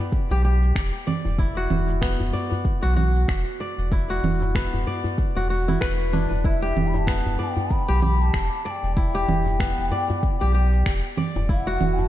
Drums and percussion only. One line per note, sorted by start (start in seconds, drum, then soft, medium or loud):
0.00 shaker medium
0.12 kick medium
0.12 shaker medium
0.31 djembe slap medium
0.31 shaker soft
0.63 shaker medium
0.76 finger snap medium
0.76 kick medium
0.76 shaker soft
0.95 shaker soft
1.08 low conga medium
1.25 djembe tone medium
1.25 shaker medium
1.39 kick loud
1.39 shaker soft
1.58 shaker soft
1.70 low conga medium
1.89 djembe tone medium
1.89 shaker medium
2.02 finger snap loud
2.02 kick loud
2.02 djembe tone medium
2.02 shaker medium
2.20 djembe bass medium
2.20 shaker soft
2.34 djembe bass medium
2.52 djembe bass medium
2.52 shaker medium
2.65 kick medium
2.65 shaker medium
2.84 djembe slap soft
2.84 shaker soft
2.97 low conga medium
3.16 shaker medium
3.28 finger snap medium
3.28 kick medium
3.28 shaker soft
3.48 shaker soft
3.60 djembe slap medium
3.79 shaker medium
3.92 kick medium
3.92 djembe slap soft
3.92 shaker soft
4.11 shaker soft
4.24 low conga medium
4.42 djembe tone medium
4.42 shaker medium
4.55 finger snap loud
4.55 kick loud
4.55 djembe tone medium
4.55 shaker medium
4.74 djembe bass medium
4.74 shaker soft
4.87 djembe bass medium
5.04 djembe bass medium
5.04 shaker medium
5.18 kick medium
5.18 shaker medium
5.36 djembe slap soft
5.36 djembe tone medium
5.36 shaker soft
5.69 low conga medium
5.69 shaker medium
5.81 finger snap medium
5.81 kick loud
5.81 shaker medium
6.01 shaker soft
6.13 low conga medium
6.31 djembe tone medium
6.31 shaker medium
6.44 kick loud
6.44 shaker soft
6.64 shaker soft
6.77 low conga medium
6.94 djembe tone medium
6.94 shaker medium
7.07 finger snap loud
7.07 kick loud
7.07 djembe tone medium
7.07 shaker medium
7.26 djembe bass medium
7.26 shaker soft
7.40 djembe bass medium
7.57 djembe bass medium
7.57 shaker medium
7.71 kick medium
7.71 shaker medium
7.88 djembe slap medium
7.88 shaker soft
8.02 low conga medium
8.21 shaker medium
8.34 finger snap loud
8.34 kick medium
8.34 shaker soft
8.53 shaker soft
8.66 djembe slap medium
8.84 shaker medium
8.97 kick loud
8.97 djembe slap soft
8.97 shaker soft
9.16 shaker soft
9.29 low conga medium
9.46 djembe tone medium
9.46 shaker medium
9.59 finger snap loud
9.59 kick loud
9.59 djembe tone medium
9.59 shaker medium
9.79 shaker soft
9.91 djembe bass medium
10.10 djembe bass loud
10.10 shaker medium
10.23 kick medium
10.23 shaker medium
10.41 djembe slap medium
10.41 shaker soft
10.73 shaker medium
10.86 finger snap loud
10.86 kick loud
10.86 shaker medium
11.05 shaker soft
11.17 low conga medium
11.36 djembe tone medium
11.36 shaker medium
11.49 kick loud
11.49 shaker medium
11.68 shaker soft
11.81 low conga medium
11.99 djembe tone medium
11.99 shaker medium